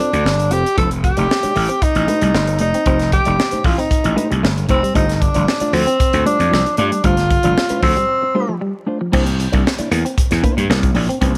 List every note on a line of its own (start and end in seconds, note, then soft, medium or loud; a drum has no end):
0.00 0.16 C4 medium
0.00 0.53 D4 medium
0.00 0.13 F4 medium
0.00 0.12 A4 medium
0.00 0.12 C5 medium
0.00 closed hi-hat medium
0.13 0.23 D2 medium
0.13 muted clean electric guitar stroke soft
0.13 closed hi-hat soft
0.25 0.52 G1 medium
0.25 muted clean electric guitar stroke soft
0.25 snare medium
0.40 closed hi-hat soft
0.51 0.63 F1 medium
0.51 0.65 C4 medium
0.51 0.65 F4 medium
0.51 0.77 G4 loud
0.51 0.65 A4 medium
0.51 0.64 C5 medium
0.51 closed hi-hat medium
0.66 muted clean electric guitar stroke medium
0.66 closed hi-hat medium
0.77 1.11 F1 loud
0.77 0.88 F3 medium
0.77 0.98 A3 medium
0.77 0.91 D#4 medium
0.77 0.90 G4 medium
0.77 0.90 A4 loud
0.77 0.90 C5 medium
0.77 kick loud
0.77 closed hi-hat medium
0.91 muted clean electric guitar stroke soft
0.91 closed hi-hat medium
1.03 1.84 G4 loud
1.03 muted clean electric guitar stroke soft
1.03 kick loud
1.03 closed hi-hat medium
1.17 1.28 F1 medium
1.17 1.27 A3 medium
1.17 1.28 A3 medium
1.17 1.29 D#4 medium
1.17 1.29 G4 medium
1.17 1.29 D5 medium
1.17 closed hi-hat medium
1.29 muted clean electric guitar stroke soft
1.29 snare loud
1.43 1.54 A3 medium
1.43 1.55 D#4 medium
1.43 1.55 G4 medium
1.43 1.56 D5 medium
1.43 muted slap bass stroke soft
1.43 closed hi-hat medium
1.56 1.67 A1 medium
1.56 1.67 A3 medium
1.56 muted clean electric guitar stroke soft
1.56 open hi-hat medium
1.69 1.79 C4 medium
1.69 muted clean electric guitar stroke soft
1.69 closed hi-hat soft
1.82 2.60 D#4 loud
1.82 muted clean electric guitar stroke soft
1.82 kick medium
1.82 closed hi-hat medium
1.95 2.06 A1 medium
1.95 muted clean electric guitar stroke soft
1.95 closed hi-hat medium
2.08 2.28 A3 medium
2.08 2.19 A3 medium
2.08 2.22 D#4 medium
2.08 2.22 G4 medium
2.08 2.21 C5 medium
2.08 closed hi-hat medium
2.21 2.32 C2 medium
2.21 2.31 G3 medium
2.21 muted clean electric guitar stroke soft
2.21 closed hi-hat soft
2.34 2.61 G1 medium
2.34 2.45 A3 medium
2.34 snare medium
2.47 muted clean electric guitar stroke soft
2.47 closed hi-hat soft
2.59 2.72 F1 medium
2.59 2.77 A3 medium
2.59 3.09 D#4 medium
2.59 2.74 D#4 medium
2.59 2.73 G4 medium
2.59 2.74 D5 medium
2.59 muted clean electric guitar stroke soft
2.59 closed hi-hat medium
2.74 2.84 C4 medium
2.74 muted clean electric guitar stroke soft
2.74 closed hi-hat soft
2.86 3.19 F1 loud
2.86 3.03 A3 loud
2.86 2.98 C4 medium
2.86 3.00 D#4 loud
2.86 3.00 G4 loud
2.86 2.99 C5 loud
2.86 kick loud
2.86 closed hi-hat medium
2.99 muted clean electric guitar stroke soft
2.99 snare soft
2.99 closed hi-hat medium
3.12 3.67 G4 loud
3.12 muted clean electric guitar stroke soft
3.12 kick loud
3.12 closed hi-hat medium
3.25 3.37 F1 medium
3.25 3.36 A3 medium
3.25 3.37 A3 medium
3.25 3.37 D#4 medium
3.25 3.38 G4 medium
3.25 3.38 D5 medium
3.25 closed hi-hat soft
3.38 muted clean electric guitar stroke soft
3.38 snare loud
3.51 3.63 A3 medium
3.51 3.64 D#4 medium
3.51 3.64 G4 medium
3.51 3.64 C5 medium
3.51 muted slap bass stroke soft
3.51 closed hi-hat medium
3.64 3.76 A1 medium
3.64 3.76 A3 medium
3.64 3.80 F4 medium
3.64 muted clean electric guitar stroke soft
3.64 kick loud
3.64 open hi-hat medium
3.78 3.88 C4 medium
3.78 4.31 D#4 medium
3.78 muted clean electric guitar stroke soft
3.78 closed hi-hat soft
3.91 muted clean electric guitar stroke soft
3.91 kick loud
3.91 closed hi-hat medium
4.04 4.15 A1 medium
4.04 muted clean electric guitar stroke soft
4.04 closed hi-hat soft
4.16 4.37 A3 medium
4.16 4.28 A3 medium
4.16 4.30 D#4 loud
4.16 4.29 G4 medium
4.16 4.29 C5 medium
4.16 closed hi-hat medium
4.30 4.41 C2 medium
4.30 4.40 G3 medium
4.30 muted clean electric guitar stroke soft
4.30 closed hi-hat soft
4.43 4.65 G1 medium
4.43 4.54 A3 medium
4.43 muted clean electric guitar stroke soft
4.43 snare loud
4.58 closed hi-hat soft
4.68 4.81 F1 medium
4.68 4.82 A3 medium
4.68 4.94 C4 medium
4.68 4.82 D#4 medium
4.68 4.82 G4 medium
4.68 4.81 C5 medium
4.68 muted clean electric guitar stroke soft
4.68 kick loud
4.68 closed hi-hat medium
4.82 4.93 G3 medium
4.82 muted clean electric guitar stroke soft
4.82 closed hi-hat medium
4.94 5.28 G1 medium
4.94 5.06 G3 medium
4.94 5.12 A3 medium
4.94 5.08 D4 loud
4.94 5.15 D#4 medium
4.94 5.08 F4 loud
4.94 5.07 C5 loud
4.94 kick loud
4.94 closed hi-hat medium
5.08 muted clean electric guitar stroke soft
5.08 snare soft
5.08 closed hi-hat medium
5.15 5.23 D#4 medium
5.21 5.75 D4 medium
5.21 muted clean electric guitar stroke soft
5.21 kick medium
5.21 closed hi-hat medium
5.34 5.45 G1 medium
5.34 5.45 F3 medium
5.34 5.46 A3 medium
5.34 5.46 D4 medium
5.34 5.47 F4 medium
5.34 5.47 D5 medium
5.34 closed hi-hat medium
5.48 muted clean electric guitar stroke soft
5.48 snare loud
5.60 5.73 A3 medium
5.60 5.73 D4 medium
5.60 5.73 F4 medium
5.60 5.74 D5 medium
5.60 muted slap bass stroke soft
5.60 closed hi-hat medium
5.73 5.85 D2 loud
5.73 5.84 F3 medium
5.73 6.26 C4 medium
5.73 open hi-hat medium
5.87 5.97 C4 medium
5.87 muted clean electric guitar stroke soft
5.87 closed hi-hat medium
5.99 muted clean electric guitar stroke soft
5.99 kick loud
5.99 closed hi-hat medium
6.13 6.24 D2 medium
6.13 muted clean electric guitar stroke soft
6.13 closed hi-hat medium
6.26 6.37 G3 medium
6.26 6.43 A3 medium
6.26 6.40 D4 medium
6.26 6.75 D4 loud
6.26 6.39 F4 medium
6.26 6.39 C5 medium
6.26 closed hi-hat medium
6.39 6.50 F2 medium
6.39 6.49 F3 medium
6.39 muted clean electric guitar stroke soft
6.39 closed hi-hat soft
6.51 6.64 C2 medium
6.51 6.63 F3 medium
6.51 snare medium
6.66 muted clean electric guitar stroke soft
6.66 closed hi-hat soft
6.77 6.90 G2 loud
6.77 6.95 A3 medium
6.77 7.06 D4 loud
6.77 6.92 D4 medium
6.77 6.91 F4 medium
6.77 6.92 D5 medium
6.77 muted clean electric guitar stroke soft
6.77 closed hi-hat medium
6.92 7.02 G3 medium
6.92 muted clean electric guitar stroke medium
6.92 closed hi-hat medium
7.04 7.37 G1 loud
7.04 7.15 G3 medium
7.04 7.21 A3 medium
7.04 7.18 D4 medium
7.04 7.82 F4 loud
7.04 7.17 F4 medium
7.04 7.17 C5 medium
7.04 kick loud
7.04 closed hi-hat medium
7.17 muted clean electric guitar stroke soft
7.17 snare soft
7.17 closed hi-hat medium
7.31 muted clean electric guitar stroke soft
7.31 kick medium
7.31 closed hi-hat medium
7.43 7.55 G1 medium
7.43 7.54 F3 medium
7.43 7.56 A3 soft
7.43 7.56 D4 medium
7.43 7.56 F4 medium
7.43 7.56 D5 medium
7.43 closed hi-hat medium
7.56 muted clean electric guitar stroke soft
7.56 snare loud
7.69 7.82 A3 medium
7.69 7.82 D4 medium
7.69 7.82 F4 medium
7.69 7.83 C5 medium
7.69 muted slap bass stroke soft
7.69 closed hi-hat medium
7.82 7.94 D2 medium
7.82 7.93 F3 medium
7.82 8.57 C4 medium
7.82 kick loud
7.82 open hi-hat medium
7.97 8.06 G3 medium
7.97 muted clean electric guitar stroke soft
7.97 closed hi-hat soft
8.09 muted clean electric guitar stroke soft
8.22 muted clean electric guitar stroke medium
8.35 8.46 G3 medium
8.35 8.52 A3 medium
8.35 8.48 D4 medium
8.35 8.48 F4 medium
8.35 8.47 C5 loud
8.48 8.58 F3 medium
8.48 muted clean electric guitar stroke soft
8.61 8.72 G3 medium
8.61 muted clean electric guitar stroke soft
8.87 9.00 A3 medium
8.87 9.00 D4 medium
8.87 9.00 F4 medium
8.87 8.99 C5 medium
8.87 muted clean electric guitar stroke soft
9.00 9.11 F3 medium
9.00 muted clean electric guitar stroke soft
9.12 9.46 C2 loud
9.12 9.29 A#3 loud
9.12 9.24 C4 medium
9.12 9.26 D4 loud
9.12 9.26 E4 loud
9.12 9.25 C5 loud
9.12 kick loud
9.12 crash loud
9.26 muted clean electric guitar stroke medium
9.26 closed hi-hat medium
9.39 muted clean electric guitar stroke soft
9.39 closed hi-hat medium
9.52 9.63 C2 medium
9.52 9.63 A#3 medium
9.52 9.64 D4 medium
9.52 9.64 E4 medium
9.52 9.65 D5 medium
9.52 kick medium
9.52 closed hi-hat medium
9.65 muted clean electric guitar stroke soft
9.65 snare loud
9.78 9.90 A#3 medium
9.78 9.90 D4 medium
9.78 9.91 E4 medium
9.78 9.92 D5 medium
9.78 muted slap bass stroke medium
9.78 closed hi-hat medium
9.91 10.03 E2 loud
9.91 10.02 A#3 medium
9.91 closed hi-hat medium
10.05 10.15 C4 medium
10.05 muted clean electric guitar stroke soft
10.05 closed hi-hat medium
10.18 muted clean electric guitar stroke soft
10.18 kick loud
10.18 closed hi-hat loud
10.31 10.41 E2 medium
10.31 muted clean electric guitar stroke soft
10.31 snare soft
10.31 closed hi-hat medium
10.43 10.63 A#3 medium
10.43 10.54 A#3 medium
10.43 10.57 D4 medium
10.43 10.56 E4 medium
10.43 10.56 C5 loud
10.43 kick medium
10.43 closed hi-hat medium
10.57 10.67 G2 medium
10.57 10.67 G3 medium
10.57 muted clean electric guitar stroke soft
10.57 closed hi-hat soft
10.69 10.91 C2 medium
10.69 10.80 A#3 medium
10.69 snare loud
10.83 muted clean electric guitar stroke soft
10.83 kick loud
10.83 closed hi-hat soft
10.95 11.07 A#1 medium
10.95 11.12 A#3 medium
10.95 11.09 D4 medium
10.95 11.08 E4 medium
10.95 11.09 D5 loud
10.95 muted clean electric guitar stroke soft
10.95 open hi-hat medium
11.09 11.19 C4 medium
11.09 muted clean electric guitar stroke soft
11.09 closed hi-hat medium
11.21 11.38 C2 loud
11.21 11.38 A#3 loud
11.21 11.32 C4 medium
11.21 11.35 D4 loud
11.21 11.34 E4 loud
11.21 11.34 C5 loud
11.21 kick loud
11.21 closed hi-hat medium
11.35 muted clean electric guitar stroke soft